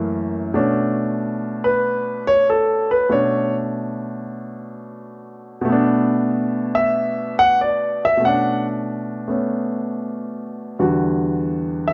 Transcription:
0, 0, Header, 1, 2, 480
1, 0, Start_track
1, 0, Key_signature, 2, "minor"
1, 0, Tempo, 639659
1, 407, Time_signature, 4, 2, 24, 8
1, 8954, End_track
2, 0, Start_track
2, 0, Title_t, "Grand piano"
2, 0, Program_c, 0, 0
2, 0, Note_on_c, 0, 42, 62
2, 0, Note_on_c, 0, 52, 55
2, 0, Note_on_c, 0, 57, 58
2, 0, Note_on_c, 0, 58, 67
2, 391, Note_off_c, 0, 42, 0
2, 395, Note_off_c, 0, 57, 0
2, 405, Note_on_c, 0, 47, 58
2, 406, Note_off_c, 0, 52, 0
2, 406, Note_on_c, 0, 57, 57
2, 409, Note_on_c, 0, 61, 59
2, 414, Note_on_c, 0, 62, 68
2, 432, Note_off_c, 0, 58, 0
2, 1232, Note_on_c, 0, 71, 82
2, 1671, Note_off_c, 0, 71, 0
2, 1706, Note_on_c, 0, 73, 107
2, 1851, Note_off_c, 0, 73, 0
2, 1873, Note_on_c, 0, 69, 76
2, 2173, Note_off_c, 0, 69, 0
2, 2184, Note_on_c, 0, 71, 79
2, 2309, Note_off_c, 0, 57, 0
2, 2312, Note_off_c, 0, 47, 0
2, 2314, Note_off_c, 0, 61, 0
2, 2320, Note_on_c, 0, 57, 49
2, 2322, Note_off_c, 0, 62, 0
2, 2323, Note_on_c, 0, 47, 48
2, 2325, Note_on_c, 0, 61, 46
2, 2330, Note_off_c, 0, 71, 0
2, 2333, Note_on_c, 0, 62, 54
2, 2341, Note_on_c, 0, 73, 87
2, 2647, Note_off_c, 0, 73, 0
2, 4201, Note_off_c, 0, 47, 0
2, 4212, Note_on_c, 0, 47, 61
2, 4228, Note_off_c, 0, 57, 0
2, 4240, Note_on_c, 0, 57, 59
2, 4247, Note_off_c, 0, 61, 0
2, 4251, Note_off_c, 0, 62, 0
2, 4272, Note_on_c, 0, 59, 61
2, 4294, Note_on_c, 0, 62, 72
2, 5065, Note_on_c, 0, 76, 94
2, 5507, Note_off_c, 0, 76, 0
2, 5545, Note_on_c, 0, 78, 119
2, 5691, Note_off_c, 0, 78, 0
2, 5712, Note_on_c, 0, 74, 73
2, 6013, Note_off_c, 0, 74, 0
2, 6040, Note_on_c, 0, 76, 94
2, 6121, Note_off_c, 0, 47, 0
2, 6132, Note_on_c, 0, 47, 51
2, 6145, Note_off_c, 0, 57, 0
2, 6156, Note_on_c, 0, 57, 42
2, 6179, Note_off_c, 0, 76, 0
2, 6180, Note_off_c, 0, 59, 0
2, 6183, Note_on_c, 0, 61, 46
2, 6191, Note_off_c, 0, 62, 0
2, 6191, Note_on_c, 0, 78, 96
2, 6211, Note_on_c, 0, 62, 59
2, 6493, Note_off_c, 0, 78, 0
2, 6951, Note_off_c, 0, 57, 0
2, 6962, Note_on_c, 0, 57, 44
2, 6969, Note_off_c, 0, 61, 0
2, 6972, Note_on_c, 0, 59, 40
2, 6981, Note_on_c, 0, 61, 49
2, 8070, Note_off_c, 0, 47, 0
2, 8085, Note_off_c, 0, 57, 0
2, 8090, Note_off_c, 0, 59, 0
2, 8094, Note_off_c, 0, 61, 0
2, 8098, Note_on_c, 0, 40, 57
2, 8102, Note_on_c, 0, 50, 50
2, 8102, Note_on_c, 0, 55, 47
2, 8105, Note_on_c, 0, 66, 60
2, 8109, Note_off_c, 0, 62, 0
2, 8911, Note_on_c, 0, 76, 85
2, 8954, Note_off_c, 0, 40, 0
2, 8954, Note_off_c, 0, 50, 0
2, 8954, Note_off_c, 0, 55, 0
2, 8954, Note_off_c, 0, 66, 0
2, 8954, Note_off_c, 0, 76, 0
2, 8954, End_track
0, 0, End_of_file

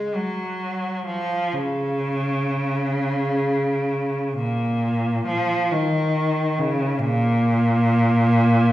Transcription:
0, 0, Header, 1, 2, 480
1, 0, Start_track
1, 0, Tempo, 941915
1, 791, Time_signature, 6, 3, 24, 8
1, 2232, Tempo, 883652
1, 4152, Tempo, 931677
1, 4569, End_track
2, 0, Start_track
2, 0, Title_t, "Cello"
2, 0, Program_c, 0, 42
2, 0, Note_on_c, 0, 56, 47
2, 70, Note_off_c, 0, 56, 0
2, 75, Note_on_c, 0, 54, 44
2, 542, Note_on_c, 0, 53, 52
2, 555, Note_off_c, 0, 54, 0
2, 781, Note_off_c, 0, 53, 0
2, 785, Note_on_c, 0, 49, 62
2, 2227, Note_on_c, 0, 46, 62
2, 2228, Note_off_c, 0, 49, 0
2, 2706, Note_off_c, 0, 46, 0
2, 2711, Note_on_c, 0, 53, 62
2, 2948, Note_off_c, 0, 53, 0
2, 2958, Note_on_c, 0, 51, 60
2, 3429, Note_on_c, 0, 49, 71
2, 3431, Note_off_c, 0, 51, 0
2, 3651, Note_on_c, 0, 46, 82
2, 3665, Note_off_c, 0, 49, 0
2, 4569, Note_off_c, 0, 46, 0
2, 4569, End_track
0, 0, End_of_file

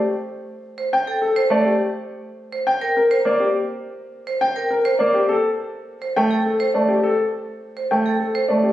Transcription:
0, 0, Header, 1, 4, 480
1, 0, Start_track
1, 0, Tempo, 582524
1, 41, Time_signature, 3, 2, 24, 8
1, 7189, End_track
2, 0, Start_track
2, 0, Title_t, "Marimba"
2, 0, Program_c, 0, 12
2, 642, Note_on_c, 0, 72, 48
2, 797, Note_off_c, 0, 72, 0
2, 885, Note_on_c, 0, 69, 58
2, 1038, Note_off_c, 0, 69, 0
2, 1123, Note_on_c, 0, 72, 74
2, 1278, Note_off_c, 0, 72, 0
2, 2081, Note_on_c, 0, 72, 52
2, 2237, Note_off_c, 0, 72, 0
2, 2319, Note_on_c, 0, 70, 66
2, 2476, Note_off_c, 0, 70, 0
2, 2563, Note_on_c, 0, 72, 76
2, 2718, Note_off_c, 0, 72, 0
2, 3519, Note_on_c, 0, 72, 53
2, 3676, Note_off_c, 0, 72, 0
2, 3757, Note_on_c, 0, 70, 64
2, 3916, Note_off_c, 0, 70, 0
2, 3998, Note_on_c, 0, 72, 74
2, 4156, Note_off_c, 0, 72, 0
2, 4958, Note_on_c, 0, 72, 46
2, 5116, Note_off_c, 0, 72, 0
2, 5197, Note_on_c, 0, 69, 55
2, 5356, Note_off_c, 0, 69, 0
2, 5438, Note_on_c, 0, 72, 64
2, 5596, Note_off_c, 0, 72, 0
2, 6400, Note_on_c, 0, 72, 50
2, 6557, Note_off_c, 0, 72, 0
2, 6640, Note_on_c, 0, 69, 46
2, 6797, Note_off_c, 0, 69, 0
2, 6881, Note_on_c, 0, 72, 62
2, 7037, Note_off_c, 0, 72, 0
2, 7189, End_track
3, 0, Start_track
3, 0, Title_t, "Grand piano"
3, 0, Program_c, 1, 0
3, 767, Note_on_c, 1, 79, 70
3, 919, Note_off_c, 1, 79, 0
3, 1003, Note_on_c, 1, 69, 53
3, 1158, Note_off_c, 1, 69, 0
3, 1247, Note_on_c, 1, 74, 59
3, 1362, Note_on_c, 1, 67, 53
3, 1399, Note_off_c, 1, 74, 0
3, 1518, Note_off_c, 1, 67, 0
3, 2198, Note_on_c, 1, 79, 72
3, 2356, Note_off_c, 1, 79, 0
3, 2445, Note_on_c, 1, 70, 59
3, 2599, Note_off_c, 1, 70, 0
3, 2685, Note_on_c, 1, 74, 54
3, 2802, Note_on_c, 1, 67, 54
3, 2839, Note_off_c, 1, 74, 0
3, 2957, Note_off_c, 1, 67, 0
3, 3634, Note_on_c, 1, 79, 74
3, 3795, Note_off_c, 1, 79, 0
3, 3877, Note_on_c, 1, 70, 53
3, 4036, Note_off_c, 1, 70, 0
3, 4111, Note_on_c, 1, 74, 54
3, 4238, Note_on_c, 1, 67, 60
3, 4274, Note_off_c, 1, 74, 0
3, 4356, Note_on_c, 1, 69, 70
3, 4396, Note_off_c, 1, 67, 0
3, 4515, Note_off_c, 1, 69, 0
3, 5079, Note_on_c, 1, 79, 69
3, 5237, Note_off_c, 1, 79, 0
3, 5322, Note_on_c, 1, 69, 50
3, 5478, Note_off_c, 1, 69, 0
3, 5555, Note_on_c, 1, 74, 50
3, 5672, Note_on_c, 1, 67, 53
3, 5715, Note_off_c, 1, 74, 0
3, 5796, Note_on_c, 1, 69, 67
3, 5834, Note_off_c, 1, 67, 0
3, 5955, Note_off_c, 1, 69, 0
3, 6518, Note_on_c, 1, 79, 62
3, 6676, Note_off_c, 1, 79, 0
3, 6753, Note_on_c, 1, 69, 42
3, 6914, Note_off_c, 1, 69, 0
3, 6992, Note_on_c, 1, 74, 44
3, 7116, Note_on_c, 1, 67, 47
3, 7154, Note_off_c, 1, 74, 0
3, 7189, Note_off_c, 1, 67, 0
3, 7189, End_track
4, 0, Start_track
4, 0, Title_t, "Grand piano"
4, 0, Program_c, 2, 0
4, 1237, Note_on_c, 2, 57, 60
4, 1396, Note_off_c, 2, 57, 0
4, 2679, Note_on_c, 2, 58, 64
4, 2836, Note_off_c, 2, 58, 0
4, 4121, Note_on_c, 2, 58, 61
4, 4277, Note_off_c, 2, 58, 0
4, 5084, Note_on_c, 2, 57, 66
4, 5238, Note_off_c, 2, 57, 0
4, 5562, Note_on_c, 2, 57, 52
4, 5717, Note_off_c, 2, 57, 0
4, 6522, Note_on_c, 2, 57, 50
4, 6677, Note_off_c, 2, 57, 0
4, 7006, Note_on_c, 2, 57, 48
4, 7159, Note_off_c, 2, 57, 0
4, 7189, End_track
0, 0, End_of_file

